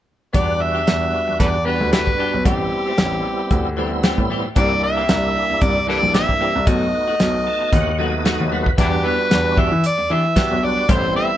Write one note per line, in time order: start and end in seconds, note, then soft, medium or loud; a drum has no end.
0.33 0.79 E2 medium
0.33 0.81 G3 medium
0.33 0.51 B3 medium
0.33 0.82 B3 medium
0.33 0.82 D4 medium
0.33 0.51 D4 medium
0.33 0.82 F#4 medium
0.33 0.52 G4 medium
0.33 0.63 D5 medium
0.33 kick medium
0.33 closed hi-hat medium
0.61 1.39 E5 medium
0.61 muted clean electric guitar stroke soft
0.75 0.86 D4 soft
0.75 0.87 G4 soft
0.86 1.10 E2 medium
0.86 1.58 G3 medium
0.86 1.58 B3 medium
0.86 1.58 D4 medium
0.86 1.59 F#4 medium
0.86 muted clean electric guitar stroke soft
0.86 snare medium
0.86 closed hi-hat medium
1.02 muted clean electric guitar stroke soft
1.13 muted clean electric guitar stroke soft
1.28 1.34 E2 soft
1.28 muted clean electric guitar stroke soft
1.40 1.74 E2 medium
1.40 1.46 A4 medium
1.40 1.48 B4 medium
1.40 1.67 D5 medium
1.40 kick medium
1.40 closed hi-hat medium
1.54 muted clean electric guitar stroke soft
1.65 2.37 G3 medium
1.65 1.80 B3 soft
1.65 2.37 B3 medium
1.65 1.80 D4 medium
1.65 2.38 D4 soft
1.65 2.38 F#4 medium
1.65 1.79 G4 medium
1.65 1.92 B4 medium
1.80 2.03 D2 medium
1.80 muted clean electric guitar stroke soft
1.92 2.09 B3 medium
1.92 2.10 D4 medium
1.92 2.00 E4 medium
1.92 1.99 G4 medium
1.92 2.10 G4 medium
1.92 2.42 B4 medium
1.92 snare loud
1.92 closed hi-hat medium
2.07 kick medium
2.18 2.33 B3 medium
2.18 2.33 D4 medium
2.18 2.32 G4 medium
2.33 2.44 B1 medium
2.33 muted clean electric guitar stroke soft
2.45 2.68 A1 medium
2.45 2.62 E3 medium
2.45 2.93 G3 medium
2.45 2.62 A3 medium
2.45 2.93 B3 medium
2.45 2.93 C4 medium
2.45 2.63 C4 medium
2.45 2.93 E4 medium
2.45 4.00 G4 medium
2.45 2.63 G4 medium
2.45 kick loud
2.45 closed hi-hat medium
2.72 muted clean electric guitar stroke soft
2.86 2.97 A3 soft
2.86 2.98 C4 soft
2.86 2.98 G4 soft
2.97 3.20 A1 medium
2.97 3.69 G3 medium
2.97 3.69 B3 medium
2.97 3.69 C4 medium
2.97 3.70 E4 medium
2.97 muted clean electric guitar stroke soft
2.97 snare medium
2.97 closed hi-hat soft
3.13 muted clean electric guitar stroke soft
3.25 muted clean electric guitar stroke soft
3.39 muted clean electric guitar stroke soft
3.51 4.08 D2 medium
3.51 kick medium
3.51 closed hi-hat soft
3.65 muted clean electric guitar stroke soft
3.76 3.92 E3 medium
3.76 4.48 G3 medium
3.76 3.92 A3 medium
3.76 4.48 B3 medium
3.76 4.49 C4 medium
3.76 3.91 C4 medium
3.76 4.49 E4 medium
3.76 3.91 G4 medium
3.92 muted clean electric guitar stroke soft
4.03 4.21 E3 medium
4.03 4.21 A3 medium
4.03 4.21 C4 medium
4.03 4.21 G4 medium
4.03 snare medium
4.03 closed hi-hat soft
4.18 4.40 A2 medium
4.18 kick medium
4.30 4.45 E3 medium
4.30 4.44 A3 medium
4.30 4.44 C4 medium
4.30 4.43 G4 medium
4.44 muted clean electric guitar stroke soft
4.55 5.01 C2 medium
4.55 4.73 E3 medium
4.55 5.03 G3 medium
4.55 5.04 A#3 medium
4.55 4.74 A#3 medium
4.55 4.74 C4 medium
4.55 5.04 D4 medium
4.55 5.04 E4 medium
4.55 4.74 G4 medium
4.55 4.82 D5 medium
4.55 kick loud
4.55 closed hi-hat medium
4.83 5.65 E5 loud
4.83 muted clean electric guitar stroke soft
4.97 5.08 A#3 soft
4.97 5.09 C4 soft
4.97 5.09 G4 soft
5.08 5.32 C2 medium
5.08 5.80 G3 medium
5.08 5.80 A#3 medium
5.08 5.81 D4 medium
5.08 5.81 E4 medium
5.08 muted clean electric guitar stroke soft
5.08 snare medium
5.08 closed hi-hat medium
5.23 muted clean electric guitar stroke soft
5.35 muted clean electric guitar stroke soft
5.50 5.56 C2 soft
5.50 muted clean electric guitar stroke soft
5.61 5.96 C2 medium
5.61 5.88 D5 medium
5.61 kick loud
5.61 closed hi-hat soft
5.76 muted clean electric guitar stroke soft
5.87 6.02 E3 soft
5.87 6.59 G3 medium
5.87 6.59 A#3 soft
5.87 6.02 A#3 medium
5.87 6.02 C4 medium
5.87 6.60 D4 medium
5.87 6.60 E4 medium
5.87 6.01 G4 medium
5.87 5.98 A4 medium
5.87 5.97 B4 medium
5.87 6.13 D5 medium
6.02 6.25 A#1 medium
6.02 muted clean electric guitar stroke soft
6.14 6.31 E3 medium
6.14 6.32 A#3 medium
6.14 6.32 C4 medium
6.14 6.32 G4 medium
6.14 6.69 E5 medium
6.14 snare medium
6.14 closed hi-hat medium
6.29 kick medium
6.40 6.55 E3 medium
6.40 6.55 A#3 medium
6.40 6.55 C4 medium
6.40 6.54 G4 medium
6.55 6.66 C2 medium
6.55 muted clean electric guitar stroke soft
6.67 6.89 B1 medium
6.67 6.84 F#3 medium
6.67 7.15 A3 medium
6.67 6.84 A3 medium
6.67 7.15 B3 medium
6.67 7.15 D#4 medium
6.67 6.85 D#4 medium
6.67 7.15 F#4 medium
6.67 6.85 F#4 medium
6.67 8.26 D#5 medium
6.67 kick loud
6.67 closed hi-hat medium
6.94 muted clean electric guitar stroke soft
7.08 7.19 A3 soft
7.08 7.20 D#4 soft
7.08 7.20 F#4 soft
7.20 7.43 B1 medium
7.20 7.91 A3 medium
7.20 7.91 B3 medium
7.20 7.92 D#4 medium
7.20 7.92 F#4 medium
7.20 muted clean electric guitar stroke soft
7.20 snare medium
7.20 closed hi-hat medium
7.34 muted clean electric guitar stroke soft
7.47 7.71 A5 medium
7.47 muted clean electric guitar stroke soft
7.61 muted clean electric guitar stroke soft
7.73 8.29 D#2 medium
7.73 7.98 F#5 medium
7.73 kick medium
7.73 closed hi-hat medium
7.87 muted clean electric guitar stroke soft
7.98 8.14 F#3 medium
7.98 8.70 A3 medium
7.98 8.14 A3 medium
7.98 8.70 B3 medium
7.98 8.71 D#4 medium
7.98 8.13 D#4 medium
7.98 8.71 F#4 medium
7.98 8.12 F#4 medium
7.98 8.24 D#5 medium
8.13 muted clean electric guitar stroke soft
8.25 8.42 F#3 medium
8.25 8.43 A3 medium
8.25 8.43 D#4 medium
8.25 8.43 F#4 medium
8.25 8.50 D#5 medium
8.25 snare medium
8.25 closed hi-hat soft
8.40 8.62 D#2 medium
8.51 8.66 F#3 medium
8.51 8.66 A3 medium
8.51 8.65 D#4 medium
8.51 8.65 F#4 medium
8.51 8.77 B4 medium
8.66 muted clean electric guitar stroke soft
8.66 kick medium
8.77 9.01 E2 loud
8.77 8.95 E3 medium
8.77 9.73 G3 medium
8.77 9.73 B3 medium
8.77 8.95 B3 medium
8.77 9.73 D4 medium
8.77 8.96 D4 medium
8.77 8.87 D4 medium
8.77 8.88 E4 medium
8.77 9.74 F#4 medium
8.77 8.96 G4 medium
8.77 9.08 G4 loud
8.77 kick loud
8.77 closed hi-hat medium
9.04 9.19 E3 medium
9.04 9.19 B3 medium
9.04 9.18 D4 medium
9.04 9.17 G4 medium
9.04 9.60 B4 loud
9.19 muted clean electric guitar stroke soft
9.30 9.65 E2 medium
9.30 muted clean electric guitar stroke soft
9.30 snare loud
9.30 closed hi-hat medium
9.45 muted clean electric guitar stroke soft
9.57 9.72 E3 medium
9.57 9.72 B3 medium
9.57 9.72 D4 medium
9.57 9.71 G4 medium
9.57 9.85 E5 medium
9.57 kick medium
9.72 9.82 E3 medium
9.72 muted clean electric guitar stroke soft
9.84 10.14 D5 loud
9.84 closed hi-hat medium
9.98 10.04 E2 soft
9.98 muted clean electric guitar stroke soft
10.10 10.25 E3 medium
10.10 10.32 E3 medium
10.10 10.25 B3 medium
10.10 10.25 D4 medium
10.10 10.24 G4 medium
10.10 10.66 E5 loud
10.25 muted clean electric guitar stroke soft
10.36 10.53 E3 medium
10.36 10.60 G3 medium
10.36 10.60 B3 medium
10.36 10.54 B3 medium
10.36 10.61 D4 medium
10.36 10.54 D4 medium
10.36 10.61 F#4 medium
10.36 10.54 G4 medium
10.36 kick medium
10.36 snare loud
10.36 closed hi-hat medium
10.51 10.73 B1 medium
10.63 10.86 G3 medium
10.63 10.87 B3 medium
10.63 10.87 D4 medium
10.63 10.87 F#4 medium
10.63 10.92 D5 medium
10.63 muted clean electric guitar stroke soft
10.77 muted clean electric guitar stroke soft
10.88 11.11 A1 loud
10.88 11.06 E3 medium
10.88 11.37 G3 medium
10.88 11.06 A3 medium
10.88 11.37 B3 medium
10.88 11.37 C4 medium
10.88 11.06 C4 medium
10.88 11.37 E4 medium
10.88 11.07 G4 medium
10.88 11.16 C5 medium
10.88 kick loud
10.88 closed hi-hat medium
11.15 11.30 E3 medium
11.15 11.29 A3 medium
11.15 11.29 C4 medium
11.15 11.28 G4 medium
11.15 11.37 E5 loud
11.29 muted clean electric guitar stroke soft